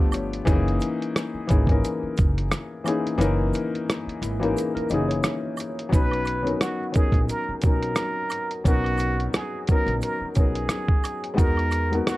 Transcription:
Already playing: upright bass G1, felt piano F3 A3 B3 D4 G4 F5
0.12 felt piano C#5, closed hi-hat, high woodblock, shaker
0.33 closed hi-hat
0.45 upright bass F#1, felt piano E3 G#3 C#4 D#4 G#4, kick, closed hi-hat, shaker
0.52 felt piano A#3
0.68 closed hi-hat
0.80 closed hi-hat, shaker
1.02 closed hi-hat
1.16 cross-stick, closed hi-hat, shaker
1.34 muted upright bass stroke
1.47 upright bass G#1, felt piano E3 A#3 C#4 D#4, kick, closed hi-hat, shaker
1.51 felt piano G#4
1.67 felt piano E3 A#3 C#4 D#4, kick, closed hi-hat
1.71 felt piano A#4
1.84 closed hi-hat, shaker
2.03 muted upright bass stroke
2.17 upright bass F#1, kick, closed hi-hat, shaker
2.38 closed hi-hat
2.52 cross-stick, closed hi-hat, shaker
2.84 felt piano E3 A#3 C#4 D#4, closed hi-hat, high woodblock, shaker
2.88 felt piano G#4
3.07 closed hi-hat
3.18 upright bass F#1, felt piano E3 A#3 C#4 D#4 A#4, closed hi-hat, shaker
3.53 closed hi-hat, shaker
3.75 closed hi-hat
3.90 cross-stick, closed hi-hat, shaker
4.07 muted upright bass stroke, closed hi-hat
4.22 upright bass G#1, tine electric piano E4, closed hi-hat, shaker
4.39 felt piano E3 A#3 C#4 D#4, tine electric piano F#4, closed hi-hat
4.44 felt piano A#4
4.56 tine electric piano G#4, closed hi-hat, shaker
4.75 tine electric piano A#4, muted upright bass stroke, closed hi-hat
4.89 upright bass F#1, felt piano E3 A#3 C#4 D#4, tine electric piano D#5, closed hi-hat, shaker
4.94 felt piano G#4
5.09 tine electric piano C#5, closed hi-hat
5.23 cross-stick, closed hi-hat, shaker
5.57 closed hi-hat, high woodblock, shaker
5.79 closed hi-hat
5.89 upright bass B1, felt piano F#3 B3 C#4 D#4, kick
5.93 felt piano B4, muted trumpet B4, closed hi-hat, shaker
6.11 closed hi-hat, high woodblock
6.25 closed hi-hat, high woodblock, shaker
6.43 felt piano F#3 B3 C#4 D#4
6.47 felt piano A#4, closed hi-hat
6.61 muted trumpet F#4, cross-stick, closed hi-hat, shaker
6.92 felt piano F#3 B3 C#4 D#4 A#4, muted trumpet G#4, kick, closed hi-hat, shaker
7.12 upright bass A#1, kick, closed hi-hat
7.29 muted trumpet A#4, closed hi-hat, shaker
7.49 muted upright bass stroke
7.62 upright bass B1, felt piano F#3 B3 C#4 D#4, muted trumpet A#4, kick, closed hi-hat, shaker
7.66 felt piano A#4
7.83 closed hi-hat
7.96 cross-stick, closed hi-hat, shaker
8.30 closed hi-hat, high woodblock, shaker
8.51 closed hi-hat
8.64 upright bass B1, felt piano F#3 B3 C#4 D#4 A#4, muted trumpet F#4, kick, closed hi-hat, shaker
8.84 closed hi-hat, high woodblock
8.98 closed hi-hat, high woodblock, shaker
9.20 closed hi-hat
9.34 muted trumpet G#4, cross-stick, closed hi-hat, shaker
9.67 felt piano F#3 B3 C#4 D#4, muted trumpet A#4, kick, closed hi-hat, shaker
9.72 felt piano A#4
9.86 upright bass A#1, closed hi-hat
10.02 muted trumpet A#4, closed hi-hat, shaker
10.21 muted upright bass stroke
10.35 upright bass B1, felt piano F#3 B3 C#4 D#4, muted trumpet G#4, kick, closed hi-hat, shaker
10.40 felt piano A#4
10.55 closed hi-hat
10.69 cross-stick, closed hi-hat, shaker
10.88 kick
11.04 closed hi-hat, high woodblock, shaker
11.24 closed hi-hat
11.34 felt piano G#3 B3 D#4 F#4
11.38 upright bass E2, felt piano A#4, muted trumpet A#4, kick, closed hi-hat, shaker
11.57 closed hi-hat, high woodblock
11.71 closed hi-hat, high woodblock, shaker
11.91 felt piano G#3 B3 D#4 F#4, closed hi-hat
11.95 felt piano A#4
12.07 muted trumpet F#4, cross-stick, closed hi-hat, shaker

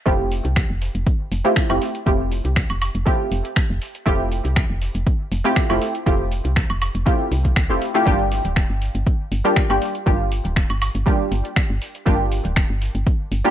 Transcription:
0.06 fm bass F1, synth stab A3 C4 E4 F4 G4, kick, closed hi-hat
0.32 open hi-hat
0.45 fm bass C2, closed hi-hat
0.56 finger snap, kick, closed hi-hat
0.70 fm bass F1
0.82 open hi-hat
0.95 fm bass F1, closed hi-hat
1.07 kick, closed hi-hat
1.32 fm bass F1, open hi-hat
1.44 synth stab A3 C4 E4 F4 G4, closed hi-hat
1.56 finger snap, kick
1.69 fm bass F1, synth stab A3 C4 E4 F4 G4, high woodblock
1.82 open hi-hat
1.95 closed hi-hat
2.06 fm bass F1, synth stab A3 C4 E4 F4 G4, kick, closed hi-hat
2.32 open hi-hat
2.45 fm bass C2, closed hi-hat
2.56 finger snap, kick, closed hi-hat
2.70 fm bass F1, high woodblock
2.82 open hi-hat, high woodblock
2.95 fm bass F1, closed hi-hat
3.06 synth stab A3 C4 E4 F4 G4, kick, closed hi-hat
3.32 fm bass F1, open hi-hat
3.45 closed hi-hat
3.56 finger snap, kick
3.70 fm bass F1
3.82 open hi-hat
3.95 closed hi-hat
4.06 fm bass F1, synth stab A3 C4 E4 F4 G4, kick, closed hi-hat
4.32 open hi-hat
4.45 fm bass C2, closed hi-hat
4.56 finger snap, kick, closed hi-hat
4.70 fm bass F1
4.82 open hi-hat
4.95 fm bass F1, closed hi-hat
5.07 kick, closed hi-hat
5.32 fm bass F1, open hi-hat
5.44 synth stab A3 C4 E4 F4 G4, closed hi-hat
5.56 finger snap, kick
5.69 fm bass F1, synth stab A3 C4 E4 F4 G4, high woodblock
5.82 open hi-hat
5.95 closed hi-hat
6.06 fm bass F1, synth stab A3 C4 E4 F4 G4, kick, closed hi-hat
6.32 open hi-hat
6.45 fm bass C2, closed hi-hat
6.56 finger snap, kick, closed hi-hat
6.70 fm bass F1, high woodblock
6.82 open hi-hat, high woodblock
6.95 fm bass F1, closed hi-hat
7.06 synth stab A3 C4 E4 F4 G4, kick, closed hi-hat
7.32 fm bass C2, open hi-hat
7.45 kick, closed hi-hat
7.56 finger snap, kick, closed hi-hat
7.69 fm bass F1, synth stab A3 C4 E4 F4 G4
7.82 open hi-hat
7.94 synth stab A3 C4 E4 F4 G4, closed hi-hat
8.06 fm bass G1, synth stab G3 A#3 D4 F4 G4, kick, closed hi-hat
8.32 open hi-hat
8.45 fm bass D1, closed hi-hat
8.56 finger snap, kick, closed hi-hat
8.70 fm bass G1
8.82 open hi-hat
8.95 fm bass G1, closed hi-hat
9.07 kick, closed hi-hat
9.32 fm bass G1, open hi-hat
9.44 synth stab G3 A#3 D4 F4 G4, closed hi-hat
9.56 finger snap, kick
9.69 fm bass G1, synth stab G3 A#3 D4 F4 G4, high woodblock
9.82 open hi-hat
9.95 closed hi-hat
10.06 fm bass G1, synth stab G3 A#3 D4 F4 G4, kick, closed hi-hat
10.32 open hi-hat
10.45 fm bass D1, closed hi-hat
10.56 finger snap, kick, closed hi-hat
10.70 fm bass G1, high woodblock
10.82 open hi-hat, high woodblock
10.95 fm bass G1, closed hi-hat
11.06 synth stab G3 A#3 D4 F4 G4, kick, closed hi-hat
11.32 fm bass G1, open hi-hat
11.45 closed hi-hat
11.56 finger snap, kick
11.70 fm bass G1
11.82 open hi-hat
11.95 closed hi-hat
12.06 fm bass G1, synth stab G3 A#3 D4 F4 G4, kick, closed hi-hat
12.32 open hi-hat
12.45 fm bass D1, closed hi-hat
12.56 finger snap, kick, closed hi-hat
12.70 fm bass G1
12.82 open hi-hat
12.95 fm bass G1, closed hi-hat
13.07 kick, closed hi-hat
13.32 fm bass G1, open hi-hat
13.44 synth stab G3 A#3 D4 F4 G4, closed hi-hat

